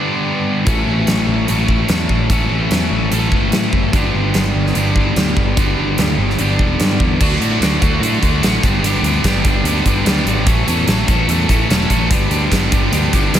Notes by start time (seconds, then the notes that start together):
Already playing: G2 D3 G3 B3 D4 G4
0.65 A1 A2 E3 A3 C#4 A4, kick, closed hi-hat
0.87 A1
1.07 A1, snare, closed hi-hat
1.27 A1
1.47 A1 A2 E3 A3 C#4, closed hi-hat
1.51 A4
1.68 kick
1.89 E2, snare, closed hi-hat
2.09 A1, kick
2.29 A1 A2 E3 A3 C#4 A4, kick, closed hi-hat
2.50 A1
2.71 E2, snare, closed hi-hat
2.91 A1
3.10 A1 A2 E3 A3 C#4, closed hi-hat
3.14 A4
3.32 G1, kick
3.51 A2, snare, closed hi-hat
3.73 F#1, kick
3.92 G1 G2 D3 G3 B3 D4 G4, kick, closed hi-hat
4.14 G1
4.34 G1, snare, closed hi-hat
4.54 G1
4.67 snare
4.74 G1 G2 D3 G3 B3 D4, closed hi-hat
4.78 G4
4.96 kick
5.16 D2, snare, closed hi-hat
5.37 G1, kick
5.56 G1 G2 D3 G3 B3 D4, kick, closed hi-hat
5.60 G4
5.78 G1
5.98 D2, snare, closed hi-hat
6.18 G1
6.30 snare
6.39 G1 G2 D3 G3 B3 D4 G4, closed hi-hat
6.59 E1, kick
6.80 G2, snare, closed hi-hat
7.00 E2, kick
7.20 D2 D3 A3 D4 F#4, kick, crash
7.40 A2 D3 A3 D4 F#4, closed hi-hat
7.60 D2 D3 A3 D4 F#4, snare, closed hi-hat
7.81 D2 D3 A3 D4 F#4, kick, closed hi-hat
8.00 A2 D3 A3 D4 F#4, closed hi-hat
8.23 D2 D3 A3 D4 F#4, kick, closed hi-hat
8.41 A1 D3 A3 D4, snare, closed hi-hat
8.45 F#4
8.63 G1 G2 D3 G3 B3 D4 G4, kick, closed hi-hat
8.82 G1 G2 D3 G3 B3 D4, closed hi-hat
8.86 G4
9.02 D2 G2 D3, closed hi-hat
9.06 G3 B3 D4 G4
9.24 G1 G2 D3 G3 B3 D4 G4, kick, snare, closed hi-hat
9.45 G1 G2 D3 G3 B3 D4 G4, kick, closed hi-hat
9.64 D2 G2 D3 G3 B3 D4 G4, closed hi-hat
9.85 G1 G2 D3 G3 B3 D4 G4, kick, closed hi-hat
10.05 D2 G2 D3 G3 B3 D4 G4, snare, closed hi-hat
10.17 snare
10.25 G#1 G2 D3 G3 B3 D4 G4, closed hi-hat
10.46 A1 A2 E3 A3 C#4 A4, kick, closed hi-hat
10.65 E2 A2 E3 A3 C#4 A4, closed hi-hat
10.87 A1 A2 E3 A3 C#4 A4, snare, closed hi-hat
11.07 A1 A2 E3 A3 C#4 A4, kick, closed hi-hat
11.28 E2 A2 E3 A3 C#4 A4, closed hi-hat
11.48 A1 A2 E3 A3 C#4 A4, kick, closed hi-hat
11.69 E1 A2 E3 A3 C#4 A4, snare, closed hi-hat
11.88 A1 A2 E3 A3 C#4 A4, kick, closed hi-hat
12.09 G1 G2 D3 G3 B3 D4 G4, kick, closed hi-hat
12.30 D2 G2 D3 G3 B3 D4 G4, closed hi-hat
12.51 G1 G2 D3 G3 B3 D4 G4, kick, snare, closed hi-hat
12.71 G1 G2 D3 G3 B3 D4 G4, kick, closed hi-hat
12.91 D2 G2 D3 G3 B3 D4 G4, closed hi-hat
13.12 G1 G2 D3 G3 B3 D4 G4, kick, closed hi-hat
13.32 D2 G2 D3 G3 B3 D4 G4, snare, closed hi-hat